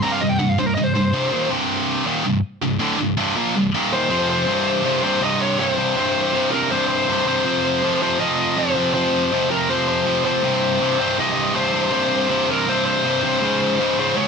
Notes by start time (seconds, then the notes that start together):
0.02 C2 G2 C3 A#5
0.12 F5
0.21 C2 G2 D#5
0.29 G5
0.38 C2 G2 F#5
0.49 F5
0.58 C2 G2 C5
0.66 A#4
0.75 C2 G2 D#5
0.84 C5
0.94 C2 G2 C5
1.13 C2 G2 C3
1.31 D#2 A#2 D#3
1.50 C2 G2 C3
2.06 D#2 A#2 D#3
2.25 C2 G2
2.62 C2 G2
2.80 D2 A2 D3
2.99 C2 G2
3.17 C2 G2 C3
3.36 A#2 F3 A#3
3.56 C2 G2
3.74 D#2 A#2 D#3
3.93 C5
4.10 F2 C3 F3
4.30 C5
4.47 C2 G2 C3
4.84 C2 G2 C3
5.03 C2 G2 C3 C5
5.21 C2 G2 C3 D#5
5.42 C#5
5.58 C2 G2 C3 C5
5.78 C2 G2 C3
5.97 C2 G2 C3 C5
6.33 C2 G2 C3
6.51 C2 G2 C3 A#4
6.71 C2 G2 C3 C5
6.88 C5
7.08 C2 G2 C3
7.26 C2 G2 C3 C5
7.44 F2 C3 F3
7.83 F2 C3 F3
8.02 F2 C3 F3 C5
8.19 F2 C3 F3 D#5
8.57 F2 C3 F3 C5
8.75 F2 C3 F3
8.94 F2 C3 F3 C5
9.32 F2 C3 F3
9.50 F2 C3 F3 A#4
9.69 F2 C3 F3 C5
9.88 C5
10.06 F2 C3 F3
10.24 F2 C3 F3 C5
10.44 C2 G2 C3
10.81 C2 G2 C3
10.99 C2 G2 C3 C5
11.18 C2 G2 C3 D#5
11.54 C2 G2 C3 C5
11.74 C2 G2 C3
11.91 C2 G2 C3 C5
12.29 C2 G2 C3
12.48 C2 G2 C3 A#4
12.67 C2 G2 C3 C5
12.86 C5
13.04 C2 G2 C3
13.23 C2 G2 C3 C5
13.42 C#2 G#2 C#3
13.79 C#2 G#2 C#3
13.98 C#2 G#2 C#3 C5
14.15 C#2 G#2 C#3 C#5